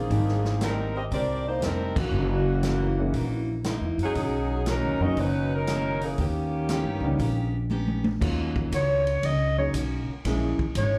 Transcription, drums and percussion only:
0.10 kick soft
0.10 open hi-hat soft
0.28 snare soft
0.45 snare soft
0.61 snare medium
0.61 closed hi-hat medium
1.12 kick soft
1.12 open hi-hat soft
1.62 snare medium
1.62 closed hi-hat medium
1.96 kick medium
1.96 crash medium
2.63 snare medium
2.63 closed hi-hat medium
3.14 kick soft
3.14 open hi-hat soft
3.64 snare medium
3.64 closed hi-hat medium
3.99 open hi-hat soft
4.15 kick soft
4.15 open hi-hat soft
4.66 snare medium
4.66 closed hi-hat medium
5.17 kick soft
5.17 open hi-hat soft
5.67 snare medium
5.67 closed hi-hat medium
6.01 open hi-hat soft
6.18 kick soft
6.18 open hi-hat soft
6.69 snare medium
6.69 closed hi-hat medium
7.19 kick soft
7.19 open hi-hat soft
7.70 high tom medium
7.88 high tom medium
8.04 high tom medium
8.21 kick medium
8.21 crash medium
8.56 kick medium
8.72 kick soft
8.72 hi-hat pedal medium
8.72 ride medium
9.07 ride soft
9.23 kick soft
9.23 ride medium
9.74 kick soft
9.74 hi-hat pedal medium
9.74 ride medium
10.25 kick soft
10.25 snare soft
10.25 ride medium
10.59 kick medium
10.75 kick soft
10.75 hi-hat pedal medium
10.75 ride medium

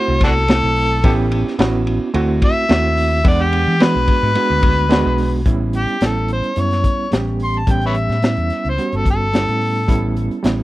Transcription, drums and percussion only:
0.21 kick medium
0.21 snare soft
0.21 ride bell medium
0.37 snare soft
0.48 snare loud
0.48 ride bell medium
0.76 open hi-hat medium
1.04 kick loud
1.04 ride bell medium
1.32 ride bell medium
1.48 snare soft
1.59 snare loud
1.59 ride bell medium
1.87 ride bell medium
2.14 ride bell medium
2.42 kick medium
2.42 ride bell medium
2.69 snare loud
2.69 ride bell medium
2.97 open hi-hat medium
3.25 kick loud
3.25 ride bell medium
3.53 ride bell medium
3.80 snare loud
3.80 ride bell medium
4.08 kick medium
4.08 ride bell medium
4.35 ride bell medium
4.63 kick medium
4.63 ride bell medium
4.91 snare loud
4.91 ride bell medium
5.18 open hi-hat medium
5.46 kick loud
5.46 closed hi-hat medium
5.73 closed hi-hat medium
5.88 closed hi-hat soft
6.01 snare loud
6.01 closed hi-hat medium
6.28 closed hi-hat medium
6.43 closed hi-hat soft
6.56 closed hi-hat medium
6.71 snare soft
6.71 closed hi-hat soft
6.84 kick medium
6.84 closed hi-hat medium
7.12 snare loud
7.12 closed hi-hat medium
7.40 open hi-hat medium
7.54 closed hi-hat soft
7.67 kick loud
7.67 closed hi-hat medium
7.82 closed hi-hat soft
7.95 closed hi-hat medium
8.09 snare soft
8.09 closed hi-hat soft
8.22 snare loud
8.22 closed hi-hat medium
8.37 closed hi-hat soft
8.50 snare soft
8.50 closed hi-hat medium
8.65 closed hi-hat soft
8.78 closed hi-hat medium
8.92 closed hi-hat soft
9.05 kick medium
9.05 closed hi-hat medium
9.33 snare loud
9.33 closed hi-hat medium
9.48 closed hi-hat soft
9.61 open hi-hat medium
9.88 kick loud
9.88 closed hi-hat medium
10.16 closed hi-hat medium
10.31 closed hi-hat soft
10.44 snare loud
10.44 closed hi-hat medium

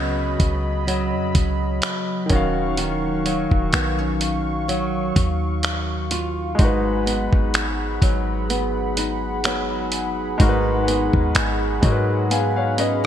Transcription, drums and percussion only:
0.40 kick medium
0.40 closed hi-hat medium
0.88 closed hi-hat medium
1.35 kick medium
1.35 closed hi-hat medium
1.82 finger snap loud
1.82 closed hi-hat medium
2.30 kick loud
2.30 closed hi-hat medium
2.77 closed hi-hat medium
3.26 closed hi-hat medium
3.51 kick medium
3.73 finger snap loud
3.73 closed hi-hat medium
4.21 closed hi-hat medium
4.69 closed hi-hat medium
5.16 kick medium
5.16 closed hi-hat medium
5.63 finger snap loud
5.63 closed hi-hat medium
6.11 closed hi-hat medium
6.59 kick loud
6.59 closed hi-hat medium
7.07 closed hi-hat medium
7.33 kick medium
7.54 finger snap loud
7.54 closed hi-hat medium
8.02 kick medium
8.02 closed hi-hat medium
8.50 closed hi-hat medium
8.97 closed hi-hat medium
9.44 finger snap loud
9.44 closed hi-hat medium
9.92 closed hi-hat medium
10.40 kick loud
10.40 closed hi-hat medium
10.88 closed hi-hat medium
11.13 kick medium
11.35 finger snap loud
11.35 closed hi-hat medium
11.83 kick medium
11.83 closed hi-hat medium
12.31 closed hi-hat medium
12.78 closed hi-hat medium

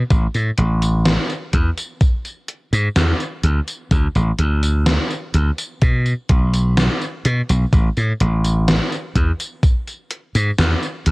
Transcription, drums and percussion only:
0.10 kick loud
0.10 closed hi-hat soft
0.10 tambourine soft
0.34 closed hi-hat soft
0.34 tambourine soft
0.58 closed hi-hat medium
0.82 closed hi-hat medium
0.82 tambourine medium
1.05 snare loud
1.05 closed hi-hat soft
1.05 tambourine soft
1.30 closed hi-hat soft
1.30 tambourine soft
1.53 kick medium
1.53 closed hi-hat medium
1.77 closed hi-hat medium
1.77 tambourine medium
2.01 kick loud
2.01 closed hi-hat medium
2.01 tambourine soft
2.25 closed hi-hat soft
2.25 tambourine soft
2.48 closed hi-hat medium
2.73 closed hi-hat medium
2.73 tambourine medium
2.96 snare loud
2.96 closed hi-hat soft
2.96 tambourine soft
3.20 closed hi-hat soft
3.20 tambourine soft
3.44 closed hi-hat medium
3.68 closed hi-hat medium
3.68 tambourine medium
3.91 kick loud
3.91 closed hi-hat soft
3.91 tambourine soft
4.15 closed hi-hat soft
4.15 tambourine soft
4.39 closed hi-hat medium
4.63 closed hi-hat medium
4.63 tambourine medium
4.86 snare loud
4.86 closed hi-hat soft
4.86 tambourine soft
5.10 closed hi-hat soft
5.10 tambourine soft
5.34 closed hi-hat medium
5.58 closed hi-hat soft
5.58 tambourine medium
5.81 kick loud
5.81 closed hi-hat medium
5.81 tambourine soft
6.06 closed hi-hat soft
6.06 tambourine soft
6.29 kick loud
6.29 closed hi-hat medium
6.54 closed hi-hat medium
6.54 tambourine medium
6.77 snare loud
6.77 closed hi-hat soft
6.77 tambourine soft
7.01 closed hi-hat soft
7.01 tambourine soft
7.25 closed hi-hat medium
7.49 closed hi-hat medium
7.49 tambourine medium
7.73 kick loud
7.73 closed hi-hat medium
7.73 tambourine soft
7.97 closed hi-hat soft
7.97 tambourine soft
8.20 closed hi-hat medium
8.45 closed hi-hat medium
8.45 tambourine medium
8.68 snare loud
8.68 closed hi-hat soft
8.68 tambourine soft
8.92 closed hi-hat soft
8.92 tambourine soft
9.16 kick medium
9.16 closed hi-hat medium
9.40 closed hi-hat medium
9.40 tambourine medium
9.63 kick loud
9.63 closed hi-hat medium
9.63 tambourine soft
9.88 closed hi-hat soft
9.88 tambourine soft
10.11 closed hi-hat medium
10.35 closed hi-hat medium
10.35 tambourine medium
10.59 snare loud
10.59 closed hi-hat medium
10.59 tambourine soft
10.83 closed hi-hat soft
10.83 tambourine soft
11.06 closed hi-hat medium

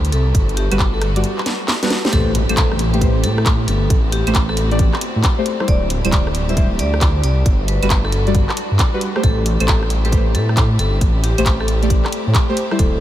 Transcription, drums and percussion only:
0.05 closed hi-hat medium
0.12 open hi-hat medium
0.35 kick loud
0.35 closed hi-hat medium
0.49 closed hi-hat soft
0.57 open hi-hat loud
0.72 cross-stick soft
0.72 closed hi-hat medium
0.72 claves medium
0.79 kick loud
0.79 clap loud
1.02 cross-stick medium
1.02 open hi-hat medium
1.16 closed hi-hat medium
1.24 closed hi-hat medium
1.38 clap medium
1.46 snare medium
1.46 open hi-hat loud
1.68 snare medium
1.68 clap loud
1.83 snare medium
1.83 closed hi-hat medium
1.90 snare medium
1.90 open hi-hat medium
2.05 snare medium
2.12 kick loud
2.12 closed hi-hat medium
2.35 open hi-hat loud
2.49 closed hi-hat medium
2.49 claves medium
2.57 kick loud
2.57 clap loud
2.57 closed hi-hat medium
2.72 cross-stick medium
2.79 open hi-hat loud
2.94 closed hi-hat soft
3.01 kick loud
3.01 closed hi-hat medium
3.24 open hi-hat loud
3.38 cross-stick medium
3.46 kick loud
3.46 clap loud
3.46 closed hi-hat medium
3.68 open hi-hat loud
3.90 kick loud
3.90 closed hi-hat medium
4.12 open hi-hat loud
4.27 closed hi-hat medium
4.27 claves medium
4.35 kick loud
4.35 clap loud
4.35 closed hi-hat medium
4.49 cross-stick medium
4.57 open hi-hat loud
4.71 closed hi-hat soft
4.79 kick loud
4.79 closed hi-hat medium
4.94 cross-stick medium
4.94 clap medium
5.01 open hi-hat loud
5.24 kick loud
5.24 clap loud
5.24 closed hi-hat medium
5.46 open hi-hat loud
5.60 cross-stick medium
5.68 kick loud
5.68 closed hi-hat medium
5.90 open hi-hat loud
6.05 closed hi-hat medium
6.05 claves medium
6.12 kick loud
6.12 clap loud
6.12 closed hi-hat medium
6.27 cross-stick medium
6.35 open hi-hat loud
6.49 closed hi-hat soft
6.57 kick loud
6.57 closed hi-hat medium
6.79 open hi-hat loud
6.94 cross-stick medium
7.01 kick loud
7.01 clap loud
7.01 closed hi-hat medium
7.24 open hi-hat loud
7.46 kick loud
7.46 closed hi-hat medium
7.68 open hi-hat loud
7.83 closed hi-hat medium
7.83 claves medium
7.90 kick loud
7.90 clap loud
7.90 closed hi-hat medium
8.05 cross-stick soft
8.12 open hi-hat loud
8.27 closed hi-hat soft
8.35 kick loud
8.35 closed hi-hat medium
8.49 cross-stick medium
8.49 clap medium
8.57 open hi-hat loud
8.79 kick loud
8.79 clap loud
8.79 closed hi-hat medium
9.01 open hi-hat loud
9.16 cross-stick medium
9.23 kick loud
9.23 closed hi-hat medium
9.46 open hi-hat loud
9.60 closed hi-hat medium
9.60 claves medium
9.68 kick loud
9.68 clap loud
9.68 closed hi-hat medium
9.83 cross-stick soft
9.90 open hi-hat loud
10.05 closed hi-hat soft
10.12 kick loud
10.12 closed hi-hat medium
10.35 open hi-hat loud
10.49 cross-stick medium
10.57 kick loud
10.57 clap loud
10.57 closed hi-hat medium
10.79 open hi-hat loud
11.01 kick loud
11.01 closed hi-hat medium
11.24 open hi-hat loud
11.38 closed hi-hat medium
11.38 claves medium
11.46 kick loud
11.46 clap loud
11.46 closed hi-hat medium
11.60 cross-stick soft
11.68 open hi-hat loud
11.83 closed hi-hat soft
11.90 kick loud
11.90 closed hi-hat medium
12.05 cross-stick medium
12.05 clap medium
12.12 open hi-hat loud
12.35 kick loud
12.35 clap loud
12.35 closed hi-hat medium
12.57 open hi-hat loud
12.71 cross-stick medium
12.79 kick loud
12.79 closed hi-hat medium

